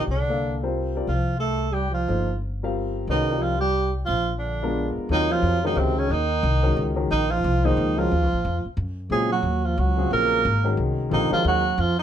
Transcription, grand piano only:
0.29 0.60 A#3 soft
0.29 0.61 D4 soft
0.29 0.61 A4 soft
0.29 0.61 D5 medium
0.29 0.61 F5 medium
0.63 0.94 G3 medium
0.63 0.94 C4 medium
0.63 0.94 F4 medium
0.63 0.94 A#4 medium
0.63 0.94 C5 medium
0.95 1.07 G3 medium
0.95 1.07 C4 soft
0.95 1.08 F4 medium
0.95 1.08 A#4 medium
0.95 1.08 D5 medium
2.08 2.27 F3 soft
2.08 2.27 A#3 soft
2.08 2.27 D#4 soft
2.08 2.27 A4 soft
2.08 2.27 C5 medium
2.63 3.07 G3 medium
2.63 3.07 C4 medium
2.63 3.07 F4 medium
2.63 3.07 A#4 medium
2.63 3.07 F5 medium
3.09 3.28 G#3 medium
3.09 3.28 C#4 medium
3.09 3.28 F#4 medium
3.09 3.28 B4 medium
3.09 3.28 D#5 medium
3.30 3.59 G3 medium
3.30 3.59 C4 soft
3.30 3.60 F4 medium
3.30 3.59 A#4 medium
3.30 3.59 D5 medium
4.63 5.07 G#3 medium
4.63 5.07 B3 medium
4.63 5.07 D4 medium
4.63 5.07 F4 medium
4.63 5.07 A#4 medium
5.10 5.60 C3 medium
5.10 5.60 F#3 medium
5.10 5.60 F4 medium
5.10 5.60 A#4 medium
5.10 5.60 C#5 medium
5.64 6.07 D#3 medium
5.64 6.07 G#3 medium
5.64 6.08 C#4 medium
5.64 6.08 F#4 medium
5.64 6.08 A#4 medium
6.62 6.94 D#3 medium
6.62 6.95 G#3 medium
6.62 6.95 C#4 medium
6.62 6.95 F#4 medium
6.62 6.95 A#4 medium
6.96 7.08 D#3 medium
6.96 7.08 G#3 medium
6.96 7.08 C#4 medium
6.96 7.08 F#4 medium
6.96 7.09 A#4 medium
7.64 7.95 F3 medium
7.64 7.96 A#3 medium
7.64 7.96 D#4 medium
7.64 7.96 G#4 medium
7.64 7.96 C5 medium
7.97 8.09 D#3 medium
7.97 8.09 G#3 medium
7.97 8.09 C#4 medium
7.97 8.09 F#4 medium
7.97 8.09 A#4 medium
9.11 9.29 C#3 medium
9.11 9.29 F#3 medium
9.11 9.30 C4 medium
9.11 9.30 F4 medium
9.11 9.30 G#4 medium
9.97 10.41 C#3 medium
9.97 10.41 F#3 medium
9.97 10.42 C4 medium
9.97 10.42 F4 medium
9.97 10.41 G#4 medium
10.64 11.08 D#3 medium
10.64 11.08 G#3 medium
10.64 11.08 C#4 medium
10.64 11.08 F#4 medium
10.64 11.09 A#4 medium
11.10 11.29 D3 medium
11.10 11.29 G3 medium
11.10 11.29 C4 medium
11.10 11.29 F4 medium
11.10 11.30 A4 medium
11.30 11.60 D#3 medium
11.30 11.60 G#3 medium
11.30 11.60 C#4 medium
11.30 11.60 F#4 medium
11.30 11.61 A#4 medium

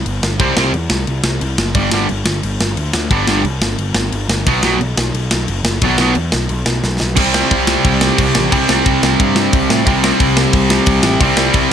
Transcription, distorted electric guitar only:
0.40 0.53 C3 medium
0.40 0.53 G3 medium
0.40 0.54 C4 loud
0.57 0.70 C3 loud
0.57 0.71 G3 loud
0.57 0.71 C4 loud
1.75 1.89 G2 medium
1.75 1.89 D3 medium
1.75 1.89 G3 loud
1.93 2.06 G2 medium
1.93 2.06 D3 loud
1.93 2.06 G3 loud
3.11 3.24 G2 medium
3.11 3.24 D3 loud
3.11 3.25 G3 loud
3.28 3.41 G2 medium
3.28 3.41 D3 loud
3.28 3.42 G3 loud
4.47 4.60 B2 loud
4.47 4.60 F#3 medium
4.47 4.60 B3 loud
4.64 4.77 B2 loud
4.64 4.77 F#3 loud
4.64 4.78 B3 loud
5.83 5.96 B2 medium
5.83 5.96 F#3 loud
5.83 5.96 B3 loud
6.00 6.13 B2 medium
6.00 6.13 F#3 loud
6.00 6.13 B3 loud
7.16 8.51 C3 medium
7.16 8.53 G3 loud
7.16 8.54 C4 loud
8.51 9.85 C3 loud
8.51 9.87 G3 loud
8.51 9.88 C4 loud
9.85 11.19 C3 loud
9.85 11.20 G3 loud
9.85 11.24 C4 loud
11.21 11.73 C3 loud
11.21 11.73 G3 loud
11.21 11.73 C4 loud

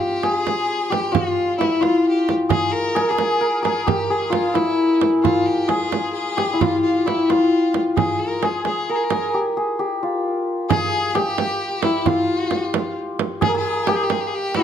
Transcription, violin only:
0.00 0.24 G4 medium
0.23 0.92 G#4 medium
0.91 1.14 G4 medium
1.12 1.58 F4 medium
1.58 1.83 E4 medium
1.82 2.09 F4 medium
2.10 2.31 G4 medium
2.50 2.73 G#4 medium
2.72 3.10 A#4 medium
3.09 3.63 G#4 medium
3.63 3.88 G#4 medium
3.87 4.13 G4 medium
4.11 4.33 G#4 medium
4.32 4.57 F4 medium
4.55 5.07 E4 medium
5.23 5.48 F4 medium
5.46 5.69 G4 medium
5.68 6.13 G#4 medium
6.13 6.62 G#4 medium
6.61 6.83 F4 medium
6.83 7.09 F4 medium
7.07 7.31 E4 medium
7.30 7.80 F4 medium
7.97 8.21 G#4 medium
8.19 8.46 A#4 medium
8.45 8.65 G#4 medium
8.66 8.91 G#4 medium
8.89 8.97 A#4 medium
8.95 9.05 G#4 medium
9.04 9.34 A#4 medium
10.70 11.10 G#4 medium
11.10 11.16 G#4 medium
11.14 11.86 G4 medium
11.84 12.08 E4 medium
12.07 12.97 F4 medium
13.42 13.55 G#4 medium
13.57 13.88 G#4 medium
13.87 13.97 G4 medium
13.96 14.05 G#4 medium
14.03 14.13 G4 medium
14.11 14.22 G#4 medium
14.20 14.28 G4 medium
14.27 14.36 G#4 medium
14.35 14.57 G4 medium
14.56 14.63 E4 medium

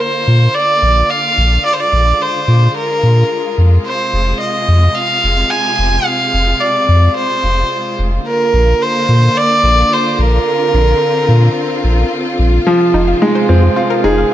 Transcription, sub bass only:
0.27 0.48 A#2 medium
0.82 1.03 A#1 medium
1.38 1.58 A#1 medium
1.93 2.13 A#1 medium
2.48 2.68 A#2 medium
3.03 3.23 A#2 medium
3.58 3.78 F2 medium
4.13 4.33 F1 medium
4.68 4.88 F2 medium
5.24 5.44 F1 medium
5.79 5.99 F1 medium
6.34 6.54 F1 medium
6.89 7.09 F2 medium
7.43 7.64 F1 medium
7.99 8.19 F1 medium
8.53 8.74 A#1 loud
9.09 9.29 A#2 medium
9.63 9.84 A#1 medium
10.19 10.39 A#1 medium
10.74 10.94 A#1 medium
11.28 11.49 A#2 medium
11.84 12.04 A#1 medium
12.39 12.59 A#1 medium
12.94 13.14 F1 loud
13.49 13.69 F2 medium
14.04 14.24 F1 medium

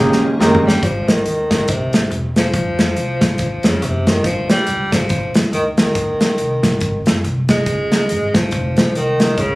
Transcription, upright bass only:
0.00 0.34 C#2 medium
0.40 0.62 F#1 loud
0.66 0.80 G1 medium
0.83 1.19 G#1 medium
1.25 1.62 D#2 medium
1.69 1.90 C2 medium
1.94 2.08 G#1 medium
2.10 2.47 E1 loud
2.54 2.90 F2 loud
2.96 3.33 C2 medium
3.39 3.61 D#2 medium
3.65 3.83 F2 medium
3.82 4.18 F#1 loud
4.24 4.61 G1 loud
4.68 5.04 C#2 medium
5.10 5.32 A#1 medium
5.35 5.50 G1 medium
5.52 5.89 D2 medium
5.95 6.32 D#2 loud
6.38 6.60 C2 medium
6.64 6.78 A#1 medium
6.81 7.03 G#1 medium
7.06 7.21 F#1 medium
7.24 7.60 C2 medium
7.66 8.11 C#2 loud
8.10 8.46 G#1 medium
8.52 8.74 F1 medium
8.78 8.92 A1 loud
8.95 9.31 C2 medium
9.38 9.55 C#2 loud

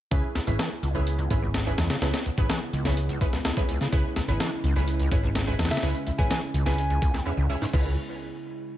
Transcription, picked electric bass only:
0.11 0.20 C#2 loud
0.47 0.56 G#1 loud
0.83 1.26 C#2 medium
1.31 1.73 G#1 medium
1.78 1.87 E2 medium
2.02 2.11 C#2 loud
2.38 2.47 G#1 loud
2.73 3.16 C#2 medium
3.93 4.02 C#2 loud
4.28 4.37 G#1 loud
4.64 5.07 C#2 medium
5.12 5.54 G#1 medium
5.59 5.68 E2 medium
5.83 5.92 C#2 loud
6.19 6.28 G#1 loud
6.54 6.97 C#2 medium
7.37 7.46 C#2 loud
7.73 7.95 C#2 loud

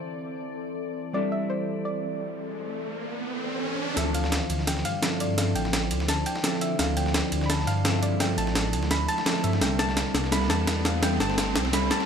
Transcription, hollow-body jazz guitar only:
0.00 1.13 E3 medium
0.00 1.12 G3 medium
0.00 1.12 C4 medium
0.00 1.12 D4 medium
0.00 1.13 A4 medium
1.13 3.94 G3 medium
1.13 3.95 C4 medium
1.13 3.95 D4 medium
1.13 3.95 E4 medium
1.13 3.95 A4 medium
3.96 5.01 E3 medium
3.96 5.00 F3 medium
3.96 5.00 C4 medium
3.96 5.01 D4 medium
3.96 5.01 A4 medium
5.02 5.36 F3 medium
5.02 5.36 C4 medium
5.02 5.36 D4 medium
5.02 5.36 E4 medium
5.02 5.36 A4 medium
5.37 6.41 F3 medium
5.37 6.42 C4 medium
5.37 6.42 D4 medium
5.37 6.42 E4 medium
5.37 6.42 A4 medium
6.43 6.77 F3 medium
6.43 6.77 C4 medium
6.43 6.77 D4 medium
6.43 6.77 E4 medium
6.43 6.77 A4 medium
6.78 7.83 F3 medium
6.78 7.83 C4 medium
6.78 7.83 D4 medium
6.78 7.83 E4 medium
6.78 7.84 A4 medium
7.84 8.18 F3 medium
7.84 8.18 C4 medium
7.84 8.18 D4 medium
7.84 8.18 E4 medium
7.84 8.19 A4 medium
8.19 9.24 F3 medium
8.19 9.24 C4 medium
8.19 9.24 D4 medium
8.19 9.24 E4 medium
8.19 9.25 A4 medium
9.25 9.59 F3 medium
9.25 9.59 C4 medium
9.25 9.59 D4 medium
9.25 9.60 E4 medium
9.25 9.60 A4 medium
9.60 10.30 G3 medium
9.60 10.30 C4 medium
9.60 10.31 D4 medium
9.60 10.31 E4 medium
9.60 10.31 A4 medium
10.31 11.00 G3 medium
10.31 11.01 C4 medium
10.31 11.01 D4 medium
10.31 11.02 E4 medium
10.31 11.02 A4 medium
11.02 11.71 G3 medium
11.02 11.71 C4 medium
11.02 11.72 D4 medium
11.02 11.72 E4 medium
11.02 11.72 A4 medium
11.72 12.06 G3 medium
11.72 12.06 C4 medium
11.72 12.06 D4 medium
11.72 12.06 E4 medium
11.72 12.06 A4 medium

